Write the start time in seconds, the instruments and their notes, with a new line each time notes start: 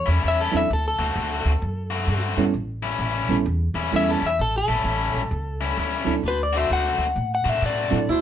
0.06 upright bass E2, overdriven electric guitar A2 G3 C#4 E4
0.23 upright bass E2, overdriven electric guitar A2 G3 C#4 E4
0.28 clean electric guitar E5
0.41 clean electric guitar A4
0.52 upright bass E2, reed electric piano F#3 C4 D4 E4 A4
0.57 clean electric guitar E5
0.70 upright bass D2, clean electric guitar A4
0.88 clean electric guitar A4
0.99 upright bass D2, overdriven electric guitar D3 A3 C4 F#4
1.16 upright bass D2, overdriven electric guitar D3 A3 C4 F#4
1.45 upright bass D2
1.62 upright bass F#2
1.90 overdriven electric guitar D3 A3 C4 F#4
2.07 upright bass G2, overdriven electric guitar D3 A3 C4 F#4
2.37 upright bass G2, reed electric piano G3 B3 C#4 E4 A4
2.54 upright bass A1
2.83 overdriven electric guitar A2 G3 C#4 E4
2.99 upright bass A1, overdriven electric guitar A2 G3 C#4 E4
3.28 upright bass A1, reed electric piano G3 B3 C#4 E4 A4
3.46 upright bass E2
3.74 upright bass E2, overdriven electric guitar A2 G3 C#4 E4
3.92 upright bass E2, overdriven electric guitar A2 G3 C#4 E4, reed electric piano G3 B3 C#4 E4 A4
3.96 clean electric guitar E5
4.11 clean electric guitar A4
4.21 upright bass E2
4.26 clean electric guitar E5
4.39 upright bass A1, clean electric guitar A4
4.58 clean electric guitar A4
4.68 upright bass A1, overdriven electric guitar A2 G3 C#4 E4
4.84 upright bass A1, overdriven electric guitar A2 G3 C#4 E4
5.14 upright bass A1
5.31 upright bass C#2
5.61 overdriven electric guitar A2 G3 C#4 E4
5.77 upright bass D2, overdriven electric guitar A2 G3 C#4 E4
6.04 upright bass D2, reed electric piano F#3 C4 D4 E4 A4
6.23 upright bass D2, horn section D4 F#4 C5
6.28 clean electric guitar B4
6.43 clean electric guitar D5
6.53 overdriven electric guitar D3 A3 C4 F#4, horn section D4 F#4 C5
6.58 clean electric guitar E5
6.70 upright bass D2, overdriven electric guitar D3 A3 C4 F#4, clean electric guitar F#5
6.98 upright bass D2
7.16 upright bass A2
7.35 clean electric guitar F#5
7.44 upright bass A2, overdriven electric guitar D3 A3 C4 F#4
7.49 clean electric guitar E5
7.62 upright bass A2, overdriven electric guitar D3 A3 C4 F#4, clean electric guitar D5
7.91 upright bass A2, reed electric piano F#3 C4 D4 E4 A4
8.08 upright bass D2, horn section D4 F#4 C5, upright piano E4